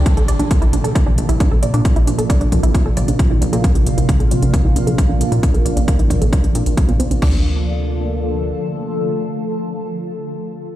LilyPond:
<<
  \new Staff \with { instrumentName = "Synth arpeggio sound" } { \time 4/4 \key d \minor \tempo 4 = 134 d'16 a'16 d''16 d'16 r16 e'16 d'16 a'16 d''16 d'16 r16 e'16 d'16 a'16 d''16 d'16 | r16 e'16 d'16 a'16 d''16 d'16 r16 e'16 d'16 a'16 d''16 d'16 r16 e'16 d'16 a'16 | d''16 d'16 r16 e'16 d'16 a'16 d''16 d'16 r16 e'16 d'16 a'16 d''16 d'16 r16 e'16 | d'16 a'16 d''16 d'16 r16 e'16 d'16 a'16 d''16 d'16 d'16 d'16 a'16 c'16 c'16 d'16 |
d'8 r2. r8 | r1 | }
  \new Staff \with { instrumentName = "Ambient pad" } { \time 4/4 \key d \minor <c f bes d' f'>1~ | <c f bes d' f'>1~ | <c f bes d' f'>1~ | <c f bes d' f'>1 |
<d f a f' a'>1~ | <d f a f' a'>1 | }
  \new Staff \with { instrumentName = "Analog synth bass" } { \clef bass \time 4/4 \key d \minor r16 bes,,16 bes,,16 bes,,16 r16 bes,,16 bes,,16 bes,,16 r16 bes,,16 bes,,16 bes,,16 r16 bes,,16 bes,,16 bes,16 | r16 bes,,16 bes,,16 bes,,16 r16 bes,,16 bes,,16 bes,,16 r16 bes,,16 bes,,16 bes,,16 r16 bes,,16 bes,,16 bes,16 | r16 bes,,16 bes,,16 bes,,16 r16 bes,,16 bes,,16 bes,,16 r16 bes,,16 bes,,16 bes,,16 r16 bes,,16 bes,,16 bes,16 | r16 bes,,16 bes,,16 bes,,16 r16 bes,,16 bes,,16 bes,,16 r16 bes,,16 bes,16 bes,,16 r16 bes,16 bes,,16 bes,,16 |
d,2. r4 | r1 | }
  \new DrumStaff \with { instrumentName = "Drums" } \drummode { \time 4/4 <hh bd>16 hh16 hh16 hh16 <hh bd>16 hh16 hh16 hh16 <hh bd>8 hh16 hh16 <hh bd>8 hh16 hh16 | <hh bd>16 hh16 hh16 hh16 <hh bd>16 hh16 <hh bd>16 hh16 <hh bd>8 hh16 hh16 <hh bd>8 hh16 hh16 | <hh bd>16 hh16 hh16 hh16 <hh bd>16 hh16 hh16 hh16 <hh bd>8 hh16 hh16 <hh bd>8 hh16 hh16 | <hh bd>16 hh16 hh16 hh16 <hh bd>16 hh16 <hh bd>16 hh16 <hh bd>16 hh16 hh16 hh16 <hh bd>16 hh16 hh16 hh16 |
<cymc bd>4 r4 r4 r4 | r4 r4 r4 r4 | }
>>